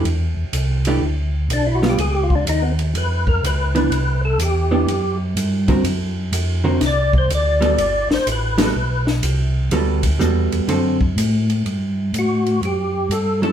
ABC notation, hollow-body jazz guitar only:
X:1
M:4/4
L:1/8
Q:"Swing" 1/4=124
K:G
V:1 name="Hollow-body jazz guitar"
z3 [E,A,DG] z3 [G,B,=F] | z6 z [E,B,D] | z3 [E,B,D] z3 [D,CF_B] | z3 [D,CF^A] z3 [G,B,F=A] |
z3 [G,B,FA] z4 | [G,B,FA] z [G,B,FA]2 [D,CFA] z3 | z6 z [F,^CEA] |]